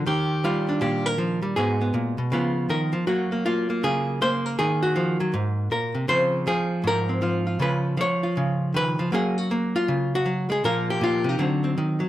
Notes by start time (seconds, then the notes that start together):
0.06 D#3 G4
0.44 G3 F4
0.69 D4
0.81 A#2 G4
1.06 A#4
1.18 F3
1.42 G3
1.56 G#2 G#3 B3 F#4 G#4
1.81 B3
1.94 A#2
2.18 B2
2.32 C#3 F3 B3 F4
2.69 D#3 A#4
2.93 F3
3.07 F#3 A#3 F#4
3.32 A#3
3.46 A#3 F4
3.70 A#3
3.83 C#3 G#4
4.22 A#3 C5
4.46 A#4
4.59 D#3 G#4
4.83 F#4
4.96 F3
5.20 F#3
5.34 G#2
5.71 A#2 A#4
5.95 C3
6.08 C#3 F3 C4 F4 C5
6.47 F3 G#4
6.84 G#2 A#4
7.09 C4
7.22 F3 F4
7.47 F4
7.59 C#3 F3 C#4 F4 B4
7.97 F3 C#5
8.23 F4
8.37 C#3
8.74 D#3 B4
8.99 F3
9.12 F#3 A#3 C#4 G#4
9.38 F#4
9.51 A#3
9.76 F4
9.88 C#3
10.15 F#4
10.26 F#3
10.50 G#3 G#4
10.64 A#2 F3 A#3 F4 A#4
10.90 G4
11.01 A#2 F4
11.24 C3
11.29 D#4
11.39 D3 F#3 C4
11.64 C4
11.78 D#3
12.00 F#3